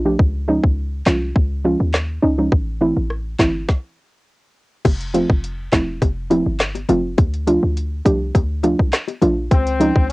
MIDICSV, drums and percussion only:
0, 0, Header, 1, 2, 480
1, 0, Start_track
1, 0, Key_signature, -1, "major"
1, 0, Tempo, 582524
1, 157, Time_signature, 4, 2, 24, 8
1, 8342, End_track
2, 0, Start_track
2, 0, Title_t, "Drums"
2, 158, Note_on_c, 9, 36, 112
2, 240, Note_off_c, 9, 36, 0
2, 523, Note_on_c, 9, 36, 91
2, 606, Note_off_c, 9, 36, 0
2, 876, Note_on_c, 9, 36, 93
2, 879, Note_on_c, 9, 38, 117
2, 879, Note_on_c, 9, 39, 92
2, 959, Note_off_c, 9, 36, 0
2, 961, Note_off_c, 9, 38, 0
2, 962, Note_off_c, 9, 39, 0
2, 1118, Note_on_c, 9, 36, 92
2, 1200, Note_off_c, 9, 36, 0
2, 1598, Note_on_c, 9, 37, 94
2, 1598, Note_on_c, 9, 38, 117
2, 1599, Note_on_c, 9, 39, 89
2, 1680, Note_off_c, 9, 37, 0
2, 1680, Note_off_c, 9, 38, 0
2, 1681, Note_off_c, 9, 39, 0
2, 2077, Note_on_c, 9, 36, 108
2, 2160, Note_off_c, 9, 36, 0
2, 2556, Note_on_c, 9, 37, 71
2, 2638, Note_off_c, 9, 37, 0
2, 2797, Note_on_c, 9, 36, 92
2, 2800, Note_on_c, 9, 38, 115
2, 2801, Note_on_c, 9, 39, 92
2, 2879, Note_off_c, 9, 36, 0
2, 2882, Note_off_c, 9, 38, 0
2, 2883, Note_off_c, 9, 39, 0
2, 3037, Note_on_c, 9, 36, 104
2, 3037, Note_on_c, 9, 38, 85
2, 3120, Note_off_c, 9, 36, 0
2, 3120, Note_off_c, 9, 38, 0
2, 3995, Note_on_c, 9, 60, 73
2, 3997, Note_on_c, 9, 42, 74
2, 3997, Note_on_c, 9, 49, 88
2, 3998, Note_on_c, 9, 36, 114
2, 4077, Note_off_c, 9, 60, 0
2, 4079, Note_off_c, 9, 42, 0
2, 4079, Note_off_c, 9, 49, 0
2, 4080, Note_off_c, 9, 36, 0
2, 4125, Note_on_c, 9, 42, 58
2, 4207, Note_off_c, 9, 42, 0
2, 4239, Note_on_c, 9, 42, 92
2, 4239, Note_on_c, 9, 60, 58
2, 4321, Note_off_c, 9, 42, 0
2, 4322, Note_off_c, 9, 60, 0
2, 4364, Note_on_c, 9, 36, 99
2, 4446, Note_off_c, 9, 36, 0
2, 4480, Note_on_c, 9, 42, 76
2, 4563, Note_off_c, 9, 42, 0
2, 4717, Note_on_c, 9, 36, 92
2, 4719, Note_on_c, 9, 42, 87
2, 4720, Note_on_c, 9, 38, 114
2, 4721, Note_on_c, 9, 39, 94
2, 4800, Note_off_c, 9, 36, 0
2, 4802, Note_off_c, 9, 42, 0
2, 4803, Note_off_c, 9, 38, 0
2, 4804, Note_off_c, 9, 39, 0
2, 4959, Note_on_c, 9, 36, 94
2, 4960, Note_on_c, 9, 42, 78
2, 4962, Note_on_c, 9, 60, 73
2, 5041, Note_off_c, 9, 36, 0
2, 5043, Note_off_c, 9, 42, 0
2, 5044, Note_off_c, 9, 60, 0
2, 5197, Note_on_c, 9, 42, 71
2, 5197, Note_on_c, 9, 60, 73
2, 5280, Note_off_c, 9, 42, 0
2, 5280, Note_off_c, 9, 60, 0
2, 5439, Note_on_c, 9, 37, 98
2, 5439, Note_on_c, 9, 38, 117
2, 5439, Note_on_c, 9, 42, 71
2, 5440, Note_on_c, 9, 39, 94
2, 5521, Note_off_c, 9, 42, 0
2, 5522, Note_off_c, 9, 37, 0
2, 5522, Note_off_c, 9, 38, 0
2, 5523, Note_off_c, 9, 39, 0
2, 5561, Note_on_c, 9, 60, 51
2, 5566, Note_on_c, 9, 42, 59
2, 5643, Note_off_c, 9, 60, 0
2, 5648, Note_off_c, 9, 42, 0
2, 5674, Note_on_c, 9, 61, 84
2, 5678, Note_on_c, 9, 42, 74
2, 5757, Note_off_c, 9, 61, 0
2, 5761, Note_off_c, 9, 42, 0
2, 5914, Note_on_c, 9, 60, 70
2, 5918, Note_on_c, 9, 42, 80
2, 5919, Note_on_c, 9, 36, 114
2, 5996, Note_off_c, 9, 60, 0
2, 6000, Note_off_c, 9, 42, 0
2, 6001, Note_off_c, 9, 36, 0
2, 6047, Note_on_c, 9, 42, 57
2, 6129, Note_off_c, 9, 42, 0
2, 6157, Note_on_c, 9, 60, 58
2, 6160, Note_on_c, 9, 42, 95
2, 6240, Note_off_c, 9, 60, 0
2, 6242, Note_off_c, 9, 42, 0
2, 6402, Note_on_c, 9, 42, 74
2, 6485, Note_off_c, 9, 42, 0
2, 6638, Note_on_c, 9, 36, 96
2, 6641, Note_on_c, 9, 42, 85
2, 6720, Note_off_c, 9, 36, 0
2, 6724, Note_off_c, 9, 42, 0
2, 6879, Note_on_c, 9, 36, 91
2, 6880, Note_on_c, 9, 60, 73
2, 6881, Note_on_c, 9, 42, 79
2, 6961, Note_off_c, 9, 36, 0
2, 6963, Note_off_c, 9, 60, 0
2, 6964, Note_off_c, 9, 42, 0
2, 7114, Note_on_c, 9, 60, 74
2, 7117, Note_on_c, 9, 42, 71
2, 7196, Note_off_c, 9, 60, 0
2, 7200, Note_off_c, 9, 42, 0
2, 7246, Note_on_c, 9, 36, 93
2, 7328, Note_off_c, 9, 36, 0
2, 7359, Note_on_c, 9, 42, 69
2, 7360, Note_on_c, 9, 37, 98
2, 7360, Note_on_c, 9, 38, 116
2, 7360, Note_on_c, 9, 39, 93
2, 7441, Note_off_c, 9, 42, 0
2, 7442, Note_off_c, 9, 37, 0
2, 7442, Note_off_c, 9, 38, 0
2, 7443, Note_off_c, 9, 39, 0
2, 7479, Note_on_c, 9, 60, 52
2, 7485, Note_on_c, 9, 42, 58
2, 7562, Note_off_c, 9, 60, 0
2, 7568, Note_off_c, 9, 42, 0
2, 7594, Note_on_c, 9, 61, 79
2, 7597, Note_on_c, 9, 42, 78
2, 7676, Note_off_c, 9, 61, 0
2, 7680, Note_off_c, 9, 42, 0
2, 7836, Note_on_c, 9, 60, 73
2, 7838, Note_on_c, 9, 36, 113
2, 7838, Note_on_c, 9, 42, 76
2, 7919, Note_off_c, 9, 60, 0
2, 7920, Note_off_c, 9, 36, 0
2, 7920, Note_off_c, 9, 42, 0
2, 7965, Note_on_c, 9, 42, 61
2, 8048, Note_off_c, 9, 42, 0
2, 8078, Note_on_c, 9, 60, 58
2, 8079, Note_on_c, 9, 42, 88
2, 8161, Note_off_c, 9, 60, 0
2, 8162, Note_off_c, 9, 42, 0
2, 8204, Note_on_c, 9, 36, 97
2, 8286, Note_off_c, 9, 36, 0
2, 8342, End_track
0, 0, End_of_file